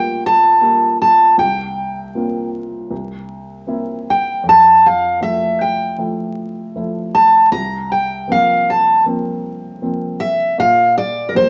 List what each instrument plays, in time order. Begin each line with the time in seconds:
Already playing: grand piano D2 G3 A#3 F4, steel-string acoustic guitar G5
0.26 steel-string acoustic guitar A5
0.61 grand piano G3 A#3 F4
1.02 steel-string acoustic guitar A5
1.38 grand piano C2, steel-string acoustic guitar G5
2.15 grand piano A#3 C4 F4
2.90 grand piano C2
3.67 grand piano A#3 C4 E4
4.10 steel-string acoustic guitar G5
4.43 grand piano F2
4.49 steel-string acoustic guitar A5
4.86 steel-string acoustic guitar F5
5.20 grand piano F3 A3 E4, steel-string acoustic guitar E5
5.61 steel-string acoustic guitar G5
5.98 grand piano F3 A3 E4
6.76 grand piano F3 A3 E4
7.15 steel-string acoustic guitar A5
7.52 grand piano C2, steel-string acoustic guitar A#5
7.92 steel-string acoustic guitar G5
8.28 grand piano F3 A#3 C4
8.32 steel-string acoustic guitar F5
8.70 steel-string acoustic guitar A5
9.06 grand piano F3 A#3 C4
9.82 grand piano F3 A#3 C4
10.20 steel-string acoustic guitar E5
10.58 grand piano A#2, steel-string acoustic guitar F5
10.98 steel-string acoustic guitar D5
11.29 grand piano F3, steel-string acoustic guitar A#4
11.33 grand piano G3 A#3, steel-string acoustic guitar C5